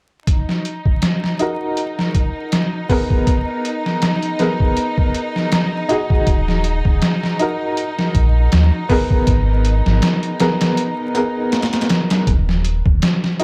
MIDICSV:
0, 0, Header, 1, 5, 480
1, 0, Start_track
1, 0, Tempo, 750000
1, 174, Time_signature, 4, 2, 24, 8
1, 8600, End_track
2, 0, Start_track
2, 0, Title_t, "Upright piano"
2, 0, Program_c, 0, 0
2, 305, Control_c, 0, 64, 127
2, 892, Note_on_c, 0, 63, 66
2, 901, Note_on_c, 0, 66, 61
2, 911, Note_on_c, 0, 70, 69
2, 1828, Note_off_c, 0, 63, 0
2, 1832, Note_off_c, 0, 66, 0
2, 1837, Note_off_c, 0, 70, 0
2, 1851, Note_on_c, 0, 59, 85
2, 1861, Note_on_c, 0, 68, 71
2, 1870, Note_on_c, 0, 70, 85
2, 2103, Control_c, 0, 64, 0
2, 2195, Control_c, 0, 64, 127
2, 2787, Note_off_c, 0, 59, 0
2, 2792, Note_off_c, 0, 68, 0
2, 2796, Note_off_c, 0, 70, 0
2, 2810, Note_on_c, 0, 59, 72
2, 2820, Note_on_c, 0, 68, 65
2, 2828, Note_on_c, 0, 70, 75
2, 3747, Note_off_c, 0, 59, 0
2, 3751, Note_off_c, 0, 68, 0
2, 3755, Note_off_c, 0, 70, 0
2, 3767, Note_on_c, 0, 63, 85
2, 3777, Note_on_c, 0, 66, 74
2, 3788, Note_on_c, 0, 68, 87
2, 4023, Control_c, 0, 64, 0
2, 4119, Control_c, 0, 64, 127
2, 4705, Note_off_c, 0, 63, 0
2, 4710, Note_off_c, 0, 66, 0
2, 4715, Note_off_c, 0, 68, 0
2, 4731, Note_on_c, 0, 63, 72
2, 4743, Note_on_c, 0, 66, 67
2, 4750, Note_on_c, 0, 70, 78
2, 5667, Note_off_c, 0, 63, 0
2, 5673, Note_off_c, 0, 66, 0
2, 5677, Note_off_c, 0, 70, 0
2, 5689, Note_on_c, 0, 59, 91
2, 5700, Note_on_c, 0, 68, 77
2, 5710, Note_on_c, 0, 70, 90
2, 5942, Control_c, 0, 64, 0
2, 6071, Control_c, 0, 64, 127
2, 6626, Note_off_c, 0, 59, 0
2, 6631, Note_off_c, 0, 68, 0
2, 6636, Note_off_c, 0, 70, 0
2, 6657, Note_on_c, 0, 59, 75
2, 6662, Note_on_c, 0, 68, 68
2, 6667, Note_on_c, 0, 70, 81
2, 7114, Note_off_c, 0, 59, 0
2, 7117, Note_off_c, 0, 68, 0
2, 7119, Note_off_c, 0, 70, 0
2, 7131, Note_on_c, 0, 59, 69
2, 7141, Note_on_c, 0, 68, 66
2, 7149, Note_on_c, 0, 70, 80
2, 7840, Note_off_c, 0, 59, 0
2, 7845, Note_off_c, 0, 68, 0
2, 7849, Note_off_c, 0, 70, 0
2, 7862, Control_c, 0, 64, 0
2, 7989, Control_c, 0, 64, 127
2, 8573, Note_on_c, 0, 63, 71
2, 8600, Note_off_c, 0, 63, 0
2, 8600, End_track
3, 0, Start_track
3, 0, Title_t, "String section"
3, 0, Program_c, 1, 48
3, 174, Note_on_c, 1, 63, 68
3, 7865, Note_off_c, 1, 63, 0
3, 8600, End_track
4, 0, Start_track
4, 0, Title_t, "Analog synth bass"
4, 0, Program_c, 2, 38
4, 4016, Note_on_c, 2, 27, 96
4, 4363, Note_off_c, 2, 27, 0
4, 4389, Note_on_c, 2, 27, 88
4, 4482, Note_off_c, 2, 27, 0
4, 5218, Note_on_c, 2, 34, 96
4, 5431, Note_off_c, 2, 34, 0
4, 5463, Note_on_c, 2, 39, 92
4, 5576, Note_off_c, 2, 39, 0
4, 5937, Note_on_c, 2, 32, 89
4, 6283, Note_off_c, 2, 32, 0
4, 6315, Note_on_c, 2, 32, 91
4, 6405, Note_off_c, 2, 32, 0
4, 7858, Note_on_c, 2, 27, 100
4, 8204, Note_off_c, 2, 27, 0
4, 8230, Note_on_c, 2, 27, 92
4, 8323, Note_off_c, 2, 27, 0
4, 8600, End_track
5, 0, Start_track
5, 0, Title_t, "Drums"
5, 174, Note_on_c, 9, 36, 103
5, 174, Note_on_c, 9, 42, 81
5, 238, Note_off_c, 9, 36, 0
5, 238, Note_off_c, 9, 42, 0
5, 313, Note_on_c, 9, 38, 36
5, 377, Note_off_c, 9, 38, 0
5, 416, Note_on_c, 9, 42, 58
5, 480, Note_off_c, 9, 42, 0
5, 547, Note_on_c, 9, 36, 82
5, 611, Note_off_c, 9, 36, 0
5, 652, Note_on_c, 9, 42, 82
5, 657, Note_on_c, 9, 38, 100
5, 716, Note_off_c, 9, 42, 0
5, 721, Note_off_c, 9, 38, 0
5, 793, Note_on_c, 9, 38, 40
5, 857, Note_off_c, 9, 38, 0
5, 892, Note_on_c, 9, 42, 58
5, 956, Note_off_c, 9, 42, 0
5, 1133, Note_on_c, 9, 42, 68
5, 1197, Note_off_c, 9, 42, 0
5, 1272, Note_on_c, 9, 38, 42
5, 1336, Note_off_c, 9, 38, 0
5, 1373, Note_on_c, 9, 42, 58
5, 1374, Note_on_c, 9, 36, 76
5, 1437, Note_off_c, 9, 42, 0
5, 1438, Note_off_c, 9, 36, 0
5, 1613, Note_on_c, 9, 42, 82
5, 1617, Note_on_c, 9, 38, 99
5, 1677, Note_off_c, 9, 42, 0
5, 1681, Note_off_c, 9, 38, 0
5, 1853, Note_on_c, 9, 36, 74
5, 1854, Note_on_c, 9, 46, 68
5, 1917, Note_off_c, 9, 36, 0
5, 1918, Note_off_c, 9, 46, 0
5, 1987, Note_on_c, 9, 36, 78
5, 2051, Note_off_c, 9, 36, 0
5, 2093, Note_on_c, 9, 36, 98
5, 2093, Note_on_c, 9, 42, 85
5, 2157, Note_off_c, 9, 36, 0
5, 2157, Note_off_c, 9, 42, 0
5, 2335, Note_on_c, 9, 42, 60
5, 2399, Note_off_c, 9, 42, 0
5, 2471, Note_on_c, 9, 38, 44
5, 2535, Note_off_c, 9, 38, 0
5, 2571, Note_on_c, 9, 42, 81
5, 2575, Note_on_c, 9, 38, 102
5, 2635, Note_off_c, 9, 42, 0
5, 2639, Note_off_c, 9, 38, 0
5, 2703, Note_on_c, 9, 42, 37
5, 2767, Note_off_c, 9, 42, 0
5, 2810, Note_on_c, 9, 42, 55
5, 2814, Note_on_c, 9, 38, 44
5, 2874, Note_off_c, 9, 42, 0
5, 2878, Note_off_c, 9, 38, 0
5, 2945, Note_on_c, 9, 36, 77
5, 3009, Note_off_c, 9, 36, 0
5, 3051, Note_on_c, 9, 42, 66
5, 3115, Note_off_c, 9, 42, 0
5, 3185, Note_on_c, 9, 36, 86
5, 3249, Note_off_c, 9, 36, 0
5, 3293, Note_on_c, 9, 42, 58
5, 3357, Note_off_c, 9, 42, 0
5, 3430, Note_on_c, 9, 38, 34
5, 3494, Note_off_c, 9, 38, 0
5, 3531, Note_on_c, 9, 42, 76
5, 3535, Note_on_c, 9, 38, 111
5, 3595, Note_off_c, 9, 42, 0
5, 3599, Note_off_c, 9, 38, 0
5, 3771, Note_on_c, 9, 42, 57
5, 3835, Note_off_c, 9, 42, 0
5, 3905, Note_on_c, 9, 36, 83
5, 3969, Note_off_c, 9, 36, 0
5, 4011, Note_on_c, 9, 42, 84
5, 4012, Note_on_c, 9, 36, 108
5, 4075, Note_off_c, 9, 42, 0
5, 4076, Note_off_c, 9, 36, 0
5, 4149, Note_on_c, 9, 38, 37
5, 4213, Note_off_c, 9, 38, 0
5, 4250, Note_on_c, 9, 42, 65
5, 4314, Note_off_c, 9, 42, 0
5, 4385, Note_on_c, 9, 36, 87
5, 4449, Note_off_c, 9, 36, 0
5, 4491, Note_on_c, 9, 42, 77
5, 4495, Note_on_c, 9, 38, 105
5, 4555, Note_off_c, 9, 42, 0
5, 4559, Note_off_c, 9, 38, 0
5, 4630, Note_on_c, 9, 38, 42
5, 4694, Note_off_c, 9, 38, 0
5, 4732, Note_on_c, 9, 42, 56
5, 4796, Note_off_c, 9, 42, 0
5, 4974, Note_on_c, 9, 42, 71
5, 5038, Note_off_c, 9, 42, 0
5, 5111, Note_on_c, 9, 38, 47
5, 5175, Note_off_c, 9, 38, 0
5, 5214, Note_on_c, 9, 36, 86
5, 5214, Note_on_c, 9, 42, 58
5, 5278, Note_off_c, 9, 36, 0
5, 5278, Note_off_c, 9, 42, 0
5, 5452, Note_on_c, 9, 42, 81
5, 5457, Note_on_c, 9, 38, 107
5, 5516, Note_off_c, 9, 42, 0
5, 5521, Note_off_c, 9, 38, 0
5, 5693, Note_on_c, 9, 46, 71
5, 5694, Note_on_c, 9, 36, 79
5, 5757, Note_off_c, 9, 46, 0
5, 5758, Note_off_c, 9, 36, 0
5, 5827, Note_on_c, 9, 36, 83
5, 5891, Note_off_c, 9, 36, 0
5, 5932, Note_on_c, 9, 42, 84
5, 5934, Note_on_c, 9, 36, 100
5, 5996, Note_off_c, 9, 42, 0
5, 5998, Note_off_c, 9, 36, 0
5, 6173, Note_on_c, 9, 42, 62
5, 6237, Note_off_c, 9, 42, 0
5, 6311, Note_on_c, 9, 38, 47
5, 6375, Note_off_c, 9, 38, 0
5, 6413, Note_on_c, 9, 42, 85
5, 6417, Note_on_c, 9, 38, 109
5, 6477, Note_off_c, 9, 42, 0
5, 6481, Note_off_c, 9, 38, 0
5, 6547, Note_on_c, 9, 42, 40
5, 6611, Note_off_c, 9, 42, 0
5, 6654, Note_on_c, 9, 42, 70
5, 6658, Note_on_c, 9, 38, 89
5, 6718, Note_off_c, 9, 42, 0
5, 6722, Note_off_c, 9, 38, 0
5, 6789, Note_on_c, 9, 42, 69
5, 6793, Note_on_c, 9, 38, 87
5, 6853, Note_off_c, 9, 42, 0
5, 6857, Note_off_c, 9, 38, 0
5, 6895, Note_on_c, 9, 42, 76
5, 6959, Note_off_c, 9, 42, 0
5, 7135, Note_on_c, 9, 42, 74
5, 7199, Note_off_c, 9, 42, 0
5, 7373, Note_on_c, 9, 42, 62
5, 7378, Note_on_c, 9, 38, 84
5, 7437, Note_off_c, 9, 42, 0
5, 7439, Note_on_c, 9, 42, 65
5, 7442, Note_off_c, 9, 38, 0
5, 7444, Note_on_c, 9, 38, 79
5, 7503, Note_off_c, 9, 42, 0
5, 7506, Note_on_c, 9, 42, 65
5, 7508, Note_off_c, 9, 38, 0
5, 7510, Note_on_c, 9, 38, 86
5, 7560, Note_off_c, 9, 42, 0
5, 7560, Note_on_c, 9, 42, 62
5, 7564, Note_off_c, 9, 38, 0
5, 7564, Note_on_c, 9, 38, 86
5, 7613, Note_off_c, 9, 42, 0
5, 7613, Note_on_c, 9, 42, 68
5, 7617, Note_off_c, 9, 38, 0
5, 7617, Note_on_c, 9, 38, 94
5, 7677, Note_off_c, 9, 42, 0
5, 7681, Note_off_c, 9, 38, 0
5, 7746, Note_on_c, 9, 42, 68
5, 7751, Note_on_c, 9, 38, 91
5, 7810, Note_off_c, 9, 42, 0
5, 7815, Note_off_c, 9, 38, 0
5, 7854, Note_on_c, 9, 36, 113
5, 7854, Note_on_c, 9, 42, 84
5, 7918, Note_off_c, 9, 36, 0
5, 7918, Note_off_c, 9, 42, 0
5, 7993, Note_on_c, 9, 38, 38
5, 8057, Note_off_c, 9, 38, 0
5, 8093, Note_on_c, 9, 42, 65
5, 8157, Note_off_c, 9, 42, 0
5, 8228, Note_on_c, 9, 36, 88
5, 8292, Note_off_c, 9, 36, 0
5, 8333, Note_on_c, 9, 42, 89
5, 8338, Note_on_c, 9, 38, 111
5, 8397, Note_off_c, 9, 42, 0
5, 8402, Note_off_c, 9, 38, 0
5, 8472, Note_on_c, 9, 38, 45
5, 8536, Note_off_c, 9, 38, 0
5, 8573, Note_on_c, 9, 42, 61
5, 8600, Note_off_c, 9, 42, 0
5, 8600, End_track
0, 0, End_of_file